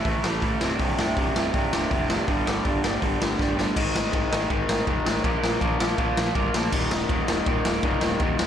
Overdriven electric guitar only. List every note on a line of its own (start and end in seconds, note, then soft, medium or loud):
0.05 0.22 A2 medium
0.05 0.23 E3 medium
0.05 0.24 A3 medium
0.24 0.42 A2 medium
0.24 0.42 E3 medium
0.24 0.42 A3 medium
0.43 0.60 A2 medium
0.43 0.60 E3 loud
0.43 0.60 A3 loud
0.61 0.78 C2 medium
0.61 0.79 G2 medium
0.61 0.80 C3 medium
0.80 0.97 C2 medium
0.80 0.98 G2 medium
0.80 0.98 C3 medium
0.98 1.16 C2 medium
0.98 1.17 G2 medium
0.98 1.17 C3 medium
1.17 1.34 C2 medium
1.17 1.35 G2 medium
1.17 1.35 C3 loud
1.35 1.53 C2 medium
1.35 1.53 G2 loud
1.35 1.54 C3 medium
1.54 1.72 C2 medium
1.54 1.72 G2 medium
1.54 1.73 C3 medium
1.73 1.90 C2 medium
1.73 1.91 G2 medium
1.73 1.91 C3 medium
1.91 2.08 C2 medium
1.91 2.09 G2 loud
1.91 2.09 C3 loud
2.09 2.27 C2 medium
2.09 2.26 G2 medium
2.09 2.27 C3 medium
2.27 2.45 G2 medium
2.27 2.45 D3 medium
2.27 2.46 G3 loud
2.46 2.63 G2 medium
2.46 2.64 D3 medium
2.46 2.64 G3 medium
2.64 2.81 G2 medium
2.64 2.82 D3 medium
2.64 2.82 G3 medium
2.83 3.00 G2 loud
2.83 3.01 D3 medium
2.83 3.01 G3 loud
3.01 3.19 G2 medium
3.01 3.19 D3 medium
3.01 3.19 G3 medium
3.20 3.37 G2 medium
3.20 3.38 D3 medium
3.20 3.38 G3 medium
3.39 3.55 G2 medium
3.39 3.56 D3 medium
3.39 3.56 G3 loud
3.57 3.75 G2 medium
3.57 3.75 D3 medium
3.57 3.75 G3 medium
3.76 4.11 G#2 medium
3.76 4.12 D#3 medium
3.76 4.12 G#3 loud
4.12 4.30 G#2 medium
4.12 4.30 D#3 medium
4.12 4.31 G#3 loud
4.31 4.48 G#2 medium
4.31 4.49 D#3 medium
4.31 4.49 G#3 medium
4.49 4.85 G#2 medium
4.49 4.86 D#3 loud
4.49 4.86 G#3 loud
4.86 5.03 G#2 medium
4.86 5.04 D#3 medium
4.86 5.05 G#3 medium
5.05 5.23 G#2 medium
5.05 5.23 D#3 medium
5.05 5.23 G#3 medium
5.23 5.59 A#2 loud
5.23 5.60 F3 loud
5.23 5.61 A#3 medium
5.60 5.78 A#2 medium
5.60 5.78 F3 loud
5.60 5.79 A#3 loud
5.79 5.96 A#2 medium
5.79 5.97 F3 medium
5.79 5.98 A#3 medium
5.97 6.34 A#2 medium
5.97 6.34 F3 loud
5.97 6.36 A#3 loud
6.35 6.53 A#2 medium
6.35 6.53 F3 medium
6.35 6.55 A#3 loud
6.54 6.71 A#2 medium
6.54 6.72 F3 medium
6.54 6.73 A#3 medium
6.72 7.09 D#2 loud
6.72 7.08 A#2 loud
6.72 7.10 D#3 loud
7.09 7.27 D#2 medium
7.09 7.27 A#2 medium
7.09 7.28 D#3 loud
7.28 7.45 D#2 medium
7.28 7.45 A#2 medium
7.28 7.46 D#3 loud
7.46 7.82 D#2 medium
7.46 7.83 A#2 loud
7.46 7.83 D#3 loud
7.83 8.01 D#2 medium
7.83 8.01 A#2 loud
7.83 8.02 D#3 loud
8.02 8.19 D#2 medium
8.02 8.19 A#2 medium
8.02 8.20 D#3 medium
8.20 8.47 D#2 loud
8.20 8.47 A#2 loud
8.20 8.47 D#3 loud